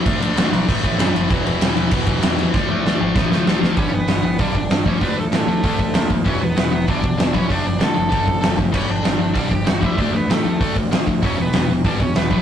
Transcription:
<<
  \new Staff \with { instrumentName = "Lead electric guitar" } { \time 4/4 \key d \lydian \tempo 4 = 193 r1 | r1 | r1 | <cis' cis''>8 <b b'>4. <d' d''>4. <cis' cis''>8 |
<b b'>8 <a a'>8 <a a'>2~ <a a'>8 r8 | <cis' cis''>8 <b b'>4. <d' d''>4. <cis' cis''>8 | <d' d''>8 <d' d''>8 <a' a''>2~ <a' a''>8 r8 | <cis' cis''>8 <d' d''>4. <d' d''>8 <g' g''>8 <fis' fis''>8 <e' e''>8 |
<d' d''>8 <b b'>8 <a a'>4. r4. | <cis' cis''>8 <b b'>4 r8 <d' d''>8 <cis' cis''>8 <b b'>8 <b b'>8 | }
  \new Staff \with { instrumentName = "Distorted electric guitar" } { \clef bass \time 4/4 \key d \lydian <d a d'>8 <d a d'>8 <d a d'>8 <d a d'>8 <a, e a>8 <a, e a>8 <a, e a>8 <a, e a>8 | <e, b, e>8 <e, b, e>8 <e, b, e>8 <e, b, e>8 <e, b, e>8 <e, b, e>8 <e, b, e>8 <e, b, e>8 | <d a d'>8 <d a d'>8 <d a d'>8 <d a d'>8 <a, e a>8 <a, e a>8 <d a d'>8 <d a d'>8 | <g, d g>8 <g, d>8 <g, d>8 <g, d>8 <g, d g>8 <g, d>8 <g, d>8 <g, d g>8 |
<d a d'>8 <d a>8 <d a>8 <d a>8 <d a d'>8 <d a>8 <d a>8 <d a>8 | <e, b, e>8 <e, b,>8 <e, b,>8 <e, b,>8 <e, b, e>8 <e, b,>8 <e, b,>8 <e, b, e>8 | <d a d'>8 <d a>8 <d a>8 <d a>8 <d a d'>8 <d a>8 <d a>8 <d a>8 | <g, d g>8 <g, d>8 <g, d>8 <g, d>8 <g, d g>8 <g, d>8 <g, d>8 <g, d g>8 |
<d a d'>8 <d a>8 <d a>8 <d a>8 <d a d'>8 <d a>8 <d a>8 <d a>8 | <e, b, e>8 <e, b,>8 <e, b,>8 <e, b,>8 <e, b, e>8 <e, b,>8 <e, b,>8 <e, b, e>8 | }
  \new Staff \with { instrumentName = "Picked electric bass" } { \clef bass \time 4/4 \key d \lydian d,8 d,8 d,8 b,,8 a,,8 a,,8 fis,8 fis,,8 | e,,8 e,,8 e,,8 e,,8 e,,8 e,,8 e,4 | d,8 d,8 d,8 gis,,8 a,,8 cis,8 d,8 d,8 | g,,8 g,,8 g,,8 g,,8 b,,8 g,,8 g,,8 d,8 |
d,8 d,8 a,8 d,8 d,4 dis,4 | e,,8 e,,8 e,,8 e,,8 gis,,8 e,,8 e,,8 b,,8 | fis,,8 fis,,8 cis,8 fis,,8 fis,,4 fis,,4 | g,,8 g,,8 g,,8 g,,8 b,,8 g,,8 g,,8 d,8 |
d,8 d,8 a,8 d,8 d,4 d,4 | e,,8 e,,8 e,,8 e,,8 gis,,8 e,,8 e,,8 b,,8 | }
  \new DrumStaff \with { instrumentName = "Drums" } \drummode { \time 4/4 <cymc bd>8 cymc8 <cymc sn>8 cymc8 <cymc bd>8 <cymc bd>8 <cymc sn>8 cymc8 | <cymc bd>8 cymc8 <cymc sn>8 cymc8 <cymc bd>8 <cymc bd>8 <cymc sn>8 cymc8 | <bd sn>4 sn4 <bd sn>8 sn8 sn8 sn8 | <hho bd>4 <hho sn>4 <hho bd>8 bd8 <hho sn>8 bd8 |
<hho bd>4 <hho sn>4 <hho bd>8 bd8 <hho sn>8 bd8 | <hho bd>4 <hho sn>4 <hho bd>8 bd8 <hho sn>8 bd8 | <hho bd>4 <hho sn>4 <hho bd>8 bd8 <hho sn>8 bd8 | <cymc bd>4 <hho sn>4 <hho bd>8 bd8 <hho sn>8 bd8 |
<hho bd>4 <hho sn>4 <hho bd>8 bd8 <hho sn>8 bd8 | <hho bd>4 <hho sn>4 <hho bd>8 bd8 <hho sn>8 bd8 | }
>>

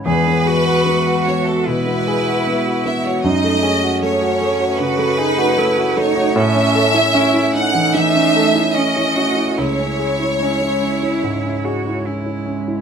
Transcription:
<<
  \new Staff \with { instrumentName = "Violin section" } { \time 4/4 \key e \major \tempo 4 = 75 b'4. cis''16 a'16 b'4. e''16 cis''16 | dis''4 cis''4 b'4. cis''8 | e''4. fis''8 e''4 dis''4 | cis''2. r4 | }
  \new Staff \with { instrumentName = "Ambient pad" } { \time 4/4 \key e \major << { <gis e''>1 | <a cis''>1~ | <a cis''>1 | <gis cis''>1 | } \\ { fis'1 | gis'1 | a'1 | e'1 | } >> }
  \new Staff \with { instrumentName = "Cello" } { \time 4/4 \key e \major gis'8 fis'4. e'2 | dis'8 cis'4. fis'8 dis'8 e'8 dis'8 | cis'4 e'8 dis'4. cis'8 fis'8 | e'4 e'4. fis'8 e'4 | }
  \new Staff \with { instrumentName = "Grand piano" } { \time 4/4 \key e \major e,16 b16 gis'16 fis'16 b16 fis'16 b16 fis'16 b,16 b16 gis'16 fis'16 b16 fis'16 b16 fis'16 | fis,16 a16 gis'16 fis'16 a16 fis'16 a16 fis'16 cis16 a16 gis'16 fis'16 a16 fis'16 a16 fis'16 | a,16 cis'16 a'16 e'16 cis'16 e'16 cis'16 e16 e16 cis'16 a'16 e'16 cis'16 e'16 cis'16 e'16 | cis,16 cis'16 gis'16 e'16 cis'16 e'16 cis'16 e'16 gis,16 cis'16 gis'16 e'16 cis'16 e'16 cis'16 e'16 | }
>>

